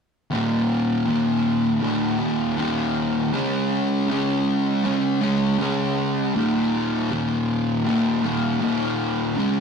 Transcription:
distorted electric guitar
0.30 D#2 A#2 D#3
1.06 D#2 A#2 D#3
1.81 D#2 A#2 D#3
2.19 A#2 D#3
2.57 D#2 A#2 D#3
3.33 C#3 G#3 C#4
4.08 C#3 G#3 C#4
4.84 C#3 G#3 C#4
5.21 G#3 C#4
5.58 C#3 G#3 C#4
6.34 D#2 A#2 D#3
7.10 D#2 A#2 D#3
7.85 D#2 A#2 D#3
8.23 A#2 D#3
8.60 D#2 A#2 D#3
9.36 C#3 G#3 C#4

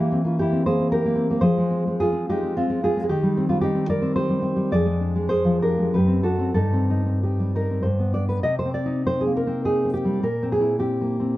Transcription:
nylon-string guitar
Already playing: E3 E4 G4
0.00 A#3
0.12 C4
0.24 A#3 C#4 F4
0.39 E4 G4
0.52 C4
0.66 A#3 G#4 C5
0.80 C4
0.92 G4 A#4
1.05 A#3
1.15 C4
1.30 A#3
1.41 F3 G#4 C5
1.58 G#3
1.70 C4
1.87 G#3
2.00 F4 G#4
2.12 C4
2.29 G#3 D#4 G4
2.43 C4
2.57 C4 F4
2.70 G#3
2.83 C4 F4 G#4
2.97 G#3
3.04 G#4
3.09 D#3 D#4 G4
3.23 G3
3.37 C4
3.49 G3 D4 F4
3.61 D#4 G4
3.75 C4
3.88 G3 A#4 D5
4.02 C4
4.16 G4 C5
4.29 G3
4.42 C4
4.56 G3
4.72 F2 G#4 D5
4.86 G#3
5.01 D4
5.16 G#3
5.29 G#4 C5
5.45 F3
5.62 D4 G4 A#4
5.78 G#3
5.94 F#2 G4 B4
6.08 C4
6.23 D4 F#4 A4
6.39 C4
6.54 G2 D#4 A4
6.73 C4
6.90 D#4
7.06 C4
7.23 D#4 G4
7.40 G3
7.55 D#4 A#4
7.71 C4
7.83 G2 C5
7.99 B3
8.13 D4 D5
8.29 B4
8.43 C3 D#5
8.59 C5
8.66 C4
8.74 D5
8.86 D#4
9.07 C4 C5
9.21 G#4
9.26 A#3
9.37 A#4
9.47 C4
9.65 D#4 G#4
9.85 C4
9.94 G4
10.05 G3
10.23 A#2 A#4
10.43 C4
10.52 G#4
10.60 E4
10.79 C4 G4
11.01 A#3
11.20 C4

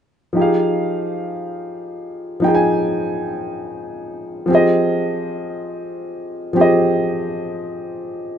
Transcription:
grand piano
0.33 F3 D#4 G4
0.39 G#4 F5
2.40 F3 D#4
2.44 G#4 G5
2.55 G#5
4.46 F3 C4
4.50 G4 G#4
4.55 D#5
6.53 F3 C4 G4
6.59 G#4 D#5

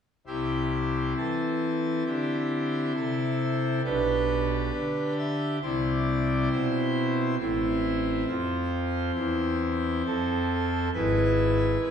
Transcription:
pipe organ
0.27 C2 C3 C4 E4 G4
1.17 E3 A4
2.07 D3 G4
2.95 C3 A4
3.84 B1 B2 D4 G4 B4
4.73 D3
5.18 E5
5.62 C2 C3 C4 E4 D5
6.52 B2 C5
7.39 A1 A2 C4 E4
8.27 F2 F4
9.15 E2 E4
10.06 F2 A4
10.94 G#1 G#2 E4 B4
11.80 G#3

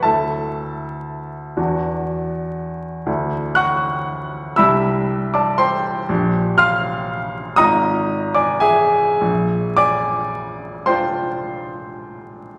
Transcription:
grand piano
0.03 D2 E4 A4 E5 A5
1.57 E2 D4 F#4
3.06 D2 D4 E4
3.55 F#5 C#6 F#6
4.56 C2 D4 G4 E5 B5 E6
5.34 D5 A5 D6
5.58 C5 G5 C6
6.09 A#1 D4 G4
6.58 F5 C6 F6
7.56 G#1 D#4 F4 D#5 A#5 D#6
8.35 D5 G#5 D6
8.60 G#4 E5 G#5
9.21 A#1
9.77 D5 G#5 D6
10.86 D4 F4 C5 G5 C6

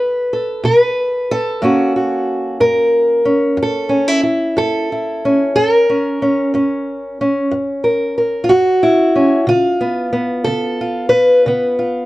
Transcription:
steel-string acoustic guitar
Already playing: B2 A4 B4
0.33 A4
0.63 B2 B4
1.31 A4
1.62 F#2 A#3 C#4 F#4
1.96 F#4
2.60 F#2 A#4
3.25 C#4
3.57 F#2
3.63 A4
3.89 C#4
4.08 E4
4.23 E4
4.57 F#2 A4
4.92 E4
5.25 C#4
5.56 F#2 A4
5.73 A#4
5.90 C#4
6.22 C#4
6.54 F#2 C#4
7.21 C#4
7.51 F#2
7.84 A#4
8.18 A#4
8.44 F4
8.49 F#2 F#4
8.83 E4
9.15 C#4
9.47 C#3 F4
9.81 B3
10.13 B3
10.44 C#3 A4
10.81 F4
11.09 B4
11.46 C#3 B3
11.79 F4

